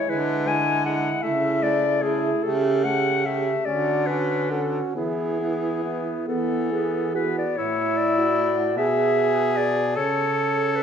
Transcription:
0.00 0.11 C#5 medium
0.07 1.10 D3 medium
0.07 0.45 G#3 medium
0.07 0.46 E4 medium
0.07 0.49 B4 medium
0.46 0.83 G#3 soft
0.46 0.85 E4 soft
0.46 0.85 G#5 medium
0.84 1.22 G#3 soft
0.84 1.23 E4 medium
0.84 1.24 F#5 medium
1.22 2.29 C#3 medium
1.22 1.61 A3 medium
1.22 1.62 E4 medium
1.22 1.64 E5 medium
1.63 2.01 A3 medium
1.63 2.02 E4 soft
1.63 2.04 D5 medium
2.02 2.32 A3 soft
2.02 2.44 E4 medium
2.02 2.44 G#4 medium
2.43 3.52 C#3 medium
2.43 2.84 A3 medium
2.43 2.84 G4 medium
2.43 2.86 A4 medium
2.84 3.25 A3 soft
2.84 3.25 G4 soft
2.84 3.27 F#5 medium
3.26 3.66 A3 soft
3.26 3.55 G4 soft
3.26 3.67 E5 medium
3.65 4.79 D3 medium
3.65 4.08 C#4 soft
3.65 4.08 F#4 soft
3.65 4.08 D5 medium
4.07 4.51 C#4 soft
4.07 4.50 F#4 soft
4.07 4.52 B4 medium
4.51 4.94 C#4 soft
4.51 4.94 F#4 soft
4.51 4.82 A4 medium
4.94 6.11 E3 soft
4.94 5.39 B3 soft
4.94 5.39 E4 soft
4.94 6.25 G#4 medium
5.40 5.83 B3 soft
5.40 5.82 E4 soft
5.83 6.27 B3 soft
5.83 6.26 E4 soft
6.27 7.42 E3 soft
6.27 6.73 B3 soft
6.27 6.71 B3 soft
6.27 7.12 A4 medium
6.71 7.15 B3 soft
6.71 7.16 G#4 soft
7.15 7.56 B3 soft
7.15 7.57 F#4 soft
7.15 7.36 B4 medium
7.38 7.59 D5 medium
7.57 8.78 A2 medium
7.57 8.20 E4 soft
7.57 8.61 E4 medium
7.57 7.99 C#5 medium
7.97 8.77 D5 medium
8.18 8.80 F#4 soft
8.76 9.96 B2 medium
8.76 9.98 G#4 medium
8.76 9.80 G#4 medium
8.76 9.58 E5 medium
9.57 9.96 D5 medium
9.96 10.83 C#3 medium
9.96 10.83 A4 medium
9.96 10.78 C#5 medium
10.76 10.83 B4 medium

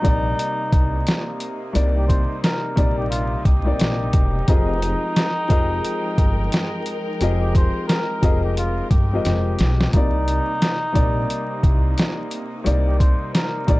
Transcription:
0.00 4.44 C3 medium
0.00 1.45 C3 medium
0.00 1.45 G3 medium
0.00 4.44 A#3 medium
0.00 1.46 A#3 medium
0.00 1.71 D#4 loud
0.00 9.89 D#4 medium
0.00 1.46 D#4 medium
0.04 0.33 A#1 medium
0.04 1.47 D5 loud
0.04 kick medium
0.04 closed hi-hat medium
0.39 closed hi-hat medium
0.72 1.01 C2 medium
0.72 kick loud
0.72 closed hi-hat medium
1.07 snare loud
1.07 closed hi-hat loud
1.40 closed hi-hat medium
1.73 2.20 C2 loud
1.73 2.70 C3 medium
1.73 2.70 G3 medium
1.73 2.71 A#3 medium
1.73 2.71 D#4 medium
1.73 2.71 D5 loud
1.73 closed hi-hat medium
1.96 2.07 G4 medium
2.08 2.39 C5 medium
2.08 kick medium
2.08 closed hi-hat medium
2.43 2.94 A#4 medium
2.43 snare loud
2.43 closed hi-hat medium
2.76 3.33 A#1 medium
2.76 3.40 C3 loud
2.76 3.41 G3 medium
2.76 3.41 A#3 medium
2.76 3.42 D#4 medium
2.76 3.42 D5 loud
2.76 kick medium
2.76 closed hi-hat medium
2.98 3.10 G4 medium
3.10 3.42 F4 loud
3.10 closed hi-hat medium
3.45 3.73 C2 medium
3.45 4.44 G4 medium
3.45 kick loud
3.45 closed hi-hat medium
3.64 4.42 C3 medium
3.64 4.42 G3 medium
3.64 4.42 A#3 medium
3.64 4.43 D#4 medium
3.64 4.43 D5 loud
3.79 4.08 A#1 loud
3.79 snare loud
3.79 closed hi-hat loud
4.13 4.42 E1 loud
4.13 kick loud
4.13 closed hi-hat medium
4.47 4.93 F1 loud
4.47 5.28 F3 medium
4.47 9.89 F3 medium
4.47 9.90 G#3 medium
4.47 5.28 C4 medium
4.47 7.17 D#4 loud
4.47 5.29 G4 medium
4.47 5.29 G#4 medium
4.47 9.89 A#4 medium
4.47 5.29 A#4 medium
4.47 5.30 D#5 loud
4.47 9.90 G5 medium
4.47 kick loud
4.47 closed hi-hat medium
4.82 closed hi-hat medium
5.16 snare loud
5.16 closed hi-hat loud
5.48 5.78 F1 medium
5.48 6.91 F3 medium
5.48 6.91 C4 medium
5.48 6.92 G4 medium
5.48 6.92 G#4 medium
5.48 6.92 A#4 medium
5.48 6.92 D#5 loud
5.48 kick medium
5.48 closed hi-hat medium
5.84 closed hi-hat medium
6.18 6.46 G1 medium
6.18 kick loud
6.18 closed hi-hat medium
6.52 snare loud
6.52 closed hi-hat loud
6.86 closed hi-hat medium
7.20 7.65 F1 loud
7.20 8.16 F3 medium
7.20 8.16 C4 medium
7.20 8.17 G4 medium
7.20 8.17 G#4 medium
7.20 8.17 A#4 medium
7.20 8.18 D#5 loud
7.20 closed hi-hat medium
7.41 7.53 G4 medium
7.55 7.86 C5 medium
7.55 kick medium
7.55 closed hi-hat medium
7.88 8.39 A#4 medium
7.88 snare loud
7.88 closed hi-hat medium
8.21 8.79 F1 medium
8.21 8.86 F3 medium
8.21 8.86 C4 medium
8.21 8.87 G4 medium
8.21 8.87 G#4 medium
8.21 8.87 A#4 medium
8.21 8.87 D#5 loud
8.21 kick medium
8.21 closed hi-hat medium
8.44 8.56 G4 medium
8.57 8.88 F4 loud
8.57 closed hi-hat medium
8.90 9.19 G1 medium
8.90 9.89 G4 medium
8.90 kick loud
8.90 closed hi-hat medium
9.13 9.89 F3 medium
9.13 9.89 G#3 medium
9.13 9.89 C4 medium
9.13 9.89 G4 medium
9.13 9.90 A#4 medium
9.13 9.90 D#5 medium
9.25 9.53 F1 loud
9.25 snare medium
9.25 closed hi-hat loud
9.59 9.87 B1 loud
9.59 snare medium
9.59 closed hi-hat medium
9.81 snare medium
9.93 10.38 C2 loud
9.93 13.80 C3 medium
9.93 10.74 C3 medium
9.93 10.74 G3 medium
9.93 13.80 A#3 medium
9.93 10.75 A#3 medium
9.93 12.62 D#4 loud
9.93 13.80 D#4 medium
9.93 10.75 D#4 medium
9.93 10.76 D5 loud
9.93 kick loud
9.93 closed hi-hat medium
10.28 closed hi-hat medium
10.62 snare loud
10.62 closed hi-hat medium
10.92 11.23 A#1 medium
10.92 12.36 C3 medium
10.92 12.36 G3 medium
10.92 12.37 A#3 medium
10.92 12.37 D#4 medium
10.92 12.37 D5 loud
10.92 kick medium
10.92 closed hi-hat medium
11.30 closed hi-hat medium
11.63 11.91 C2 loud
11.63 kick loud
11.63 closed hi-hat medium
11.98 snare loud
11.98 closed hi-hat loud
12.31 closed hi-hat medium
12.64 13.11 C2 loud
12.64 13.61 C3 medium
12.64 13.61 G3 medium
12.64 13.61 A#3 medium
12.64 13.62 D#4 medium
12.64 13.62 D5 loud
12.64 closed hi-hat medium
12.87 12.98 G4 medium
12.99 13.30 C5 medium
12.99 kick medium
12.99 closed hi-hat medium
13.34 13.80 A#4 medium
13.34 snare loud
13.34 closed hi-hat loud
13.67 13.80 A#1 medium
13.67 13.80 C3 medium
13.67 13.80 G3 medium
13.67 13.80 A#3 medium
13.67 13.80 D#4 medium
13.67 13.80 D5 loud
13.67 kick medium
13.67 closed hi-hat medium

